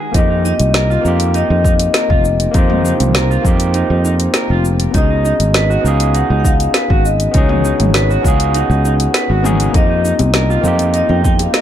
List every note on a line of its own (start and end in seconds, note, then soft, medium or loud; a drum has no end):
0.00 0.10 D#3 medium
0.00 0.10 G#3 medium
0.00 0.11 B3 medium
0.00 0.10 C#4 medium
0.00 0.11 D#4 medium
0.00 0.12 D#4 medium
0.00 0.11 F#4 medium
0.00 0.12 F#4 medium
0.00 0.13 G#4 medium
0.12 0.52 F2 medium
0.12 1.00 A#3 medium
0.12 1.00 C4 medium
0.12 0.29 D#4 medium
0.12 1.01 D#4 medium
0.12 0.28 D#5 loud
0.12 kick loud
0.12 closed hi-hat soft
0.12 shaker soft
0.16 1.02 F4 medium
0.16 1.03 G4 medium
0.30 0.43 D#4 medium
0.45 0.53 D#4 loud
0.45 1.01 D#5 loud
0.45 shaker medium
0.60 0.97 C2 medium
0.60 closed hi-hat medium
0.60 shaker soft
0.74 0.89 A#4 medium
0.74 snare loud
0.74 closed hi-hat soft
0.74 shaker soft
0.90 1.04 F4 loud
0.90 shaker soft
1.01 1.42 F2 medium
1.01 2.50 A#3 medium
1.01 2.50 C4 medium
1.01 2.51 D#4 medium
1.01 1.36 F5 loud
1.05 2.52 F4 medium
1.05 2.53 G4 medium
1.05 shaker medium
1.20 closed hi-hat medium
1.20 shaker soft
1.34 1.49 D#4 medium
1.34 2.51 D#5 loud
1.34 closed hi-hat soft
1.34 shaker soft
1.50 1.87 F2 loud
1.50 1.63 D#4 medium
1.65 1.73 D#4 medium
1.65 kick loud
1.65 shaker medium
1.79 closed hi-hat medium
1.79 shaker soft
1.94 2.09 A#4 medium
1.94 snare loud
1.94 closed hi-hat soft
1.94 shaker soft
2.10 2.47 F1 medium
2.10 2.24 F4 loud
2.10 kick loud
2.25 shaker medium
2.40 closed hi-hat medium
2.40 shaker soft
2.51 2.92 F2 loud
2.51 3.39 A#3 medium
2.51 3.40 C4 medium
2.51 2.68 D#4 medium
2.51 3.41 D#4 medium
2.51 2.83 C5 medium
2.51 kick loud
2.51 closed hi-hat soft
2.51 shaker soft
2.56 3.42 F4 medium
2.56 3.43 G4 medium
2.70 2.83 D#4 medium
2.70 mid tom medium
2.84 2.93 D#4 loud
2.84 4.61 C5 medium
2.84 shaker medium
3.00 3.37 C2 medium
3.00 closed hi-hat medium
3.00 mid tom medium
3.00 shaker soft
3.14 3.28 A#4 medium
3.14 snare loud
3.14 closed hi-hat soft
3.14 shaker soft
3.30 3.44 F4 loud
3.30 shaker soft
3.42 3.82 F2 medium
3.42 4.90 A#3 medium
3.42 4.91 C4 medium
3.42 4.91 D#4 medium
3.42 kick loud
3.42 shaker medium
3.47 4.92 F4 medium
3.47 4.93 G4 medium
3.60 closed hi-hat medium
3.60 shaker soft
3.74 3.89 D#4 medium
3.74 closed hi-hat soft
3.74 shaker soft
3.90 4.27 F2 medium
3.90 4.03 D#4 medium
4.05 4.13 D#4 loud
4.05 shaker medium
4.20 closed hi-hat medium
4.20 shaker soft
4.34 4.49 A#4 medium
4.34 snare loud
4.34 closed hi-hat soft
4.34 shaker soft
4.50 4.87 F1 medium
4.50 4.64 F4 loud
4.65 shaker medium
4.80 closed hi-hat medium
4.80 shaker soft
4.91 5.32 C#2 loud
4.91 5.79 B3 medium
4.91 5.80 C#4 medium
4.91 5.81 D#4 medium
4.91 5.09 D#4 medium
4.91 kick loud
4.91 closed hi-hat soft
4.95 5.82 F#4 medium
4.95 5.83 G#4 medium
4.95 5.23 D#5 medium
4.95 shaker soft
5.10 5.23 D#4 medium
5.25 5.33 D#4 loud
5.25 5.81 D#5 loud
5.25 shaker medium
5.40 5.77 G#1 medium
5.40 closed hi-hat medium
5.40 shaker soft
5.54 5.69 B4 medium
5.54 snare loud
5.54 closed hi-hat soft
5.54 shaker soft
5.70 5.84 F#4 loud
5.70 shaker soft
5.81 6.22 C#2 medium
5.81 7.29 B3 medium
5.81 7.30 C#4 medium
5.81 7.31 D#4 medium
5.85 7.32 F#4 medium
5.85 7.33 G#4 medium
5.85 6.16 F5 loud
5.85 shaker medium
6.00 closed hi-hat medium
6.00 shaker soft
6.15 6.29 D#4 medium
6.15 6.37 F#5 loud
6.15 closed hi-hat soft
6.15 shaker soft
6.30 6.67 C#2 medium
6.30 6.43 D#4 medium
6.40 6.46 F#5 medium
6.44 6.53 D#4 medium
6.44 7.07 F5 loud
6.44 kick loud
6.44 shaker medium
6.60 closed hi-hat medium
6.60 shaker soft
6.74 6.89 B4 medium
6.74 snare loud
6.74 closed hi-hat soft
6.74 shaker soft
6.90 7.27 G#1 medium
6.90 7.04 F#4 loud
6.90 kick loud
7.05 7.33 D#5 medium
7.05 shaker medium
7.20 closed hi-hat medium
7.20 shaker soft
7.31 7.72 C#2 loud
7.31 8.20 B3 medium
7.31 8.20 C#4 medium
7.31 7.49 D#4 medium
7.31 8.21 D#4 medium
7.31 8.27 C#5 medium
7.31 kick loud
7.31 closed hi-hat soft
7.31 shaker soft
7.36 8.22 F#4 medium
7.36 8.23 G#4 medium
7.49 7.63 D#4 medium
7.49 mid tom medium
7.65 7.73 D#4 loud
7.65 shaker medium
7.80 8.17 G#1 medium
7.80 closed hi-hat medium
7.80 mid tom medium
7.80 shaker soft
7.94 8.09 B4 medium
7.94 snare medium
7.94 closed hi-hat soft
7.94 shaker soft
8.10 8.24 F#4 loud
8.10 shaker soft
8.21 8.62 C#2 medium
8.21 9.40 B3 medium
8.21 9.41 C#4 medium
8.21 9.42 D#4 medium
8.21 8.53 F5 medium
8.21 kick loud
8.21 shaker medium
8.26 9.43 F#4 medium
8.26 9.43 G#4 medium
8.40 closed hi-hat medium
8.40 shaker soft
8.54 8.69 D#4 medium
8.54 9.41 F#5 loud
8.54 closed hi-hat soft
8.54 shaker soft
8.70 9.06 C#2 medium
8.70 8.83 D#4 medium
8.70 shaker soft
8.85 8.93 D#4 loud
8.85 shaker medium
9.00 closed hi-hat medium
9.00 shaker soft
9.14 9.29 B4 medium
9.14 snare loud
9.14 closed hi-hat soft
9.14 shaker soft
9.30 9.66 G#1 medium
9.30 9.44 F#4 loud
9.43 9.70 B3 medium
9.43 9.71 C#4 medium
9.43 9.71 D#4 medium
9.43 9.71 F#4 medium
9.43 9.72 G#4 medium
9.43 mid tom medium
9.43 shaker medium
9.60 closed hi-hat medium
9.60 shaker soft
9.68 10.59 A#3 medium
9.68 9.75 F5 medium
9.73 10.12 F2 loud
9.73 10.60 C4 medium
9.73 10.61 D#4 medium
9.73 9.88 D#4 medium
9.73 10.62 F4 medium
9.73 10.94 D#5 loud
9.73 kick loud
9.73 closed hi-hat soft
9.73 high bongo soft
9.73 shaker soft
9.78 10.63 G4 medium
9.90 10.03 D#4 medium
10.05 10.13 D#4 loud
10.05 shaker medium
10.19 10.57 C2 medium
10.19 closed hi-hat medium
10.19 high conga loud
10.19 shaker soft
10.34 10.49 A#4 medium
10.34 snare medium
10.34 closed hi-hat soft
10.34 high bongo medium
10.34 shaker soft
10.50 10.64 F4 loud
10.50 shaker soft
10.61 11.01 F2 medium
10.61 11.61 A#3 medium
10.61 11.61 C4 medium
10.61 11.61 D#4 medium
10.61 low conga medium
10.61 shaker medium
10.66 11.61 F4 medium
10.66 11.61 G4 medium
10.79 closed hi-hat medium
10.79 high bongo soft
10.79 shaker soft
10.94 11.08 D#4 medium
10.94 11.02 D#5 loud
10.94 closed hi-hat soft
10.94 shaker soft
11.09 11.46 F2 medium
11.09 11.23 D#4 medium
11.09 11.24 G5 loud
11.09 high conga medium
11.24 11.33 D#4 loud
11.24 11.41 G5 loud
11.24 kick loud
11.24 shaker medium
11.39 11.55 F5 loud
11.39 closed hi-hat medium
11.39 high bongo medium
11.39 shaker soft
11.54 11.61 A#4 medium
11.54 11.61 D#5 medium
11.54 snare loud
11.54 closed hi-hat soft
11.54 shaker soft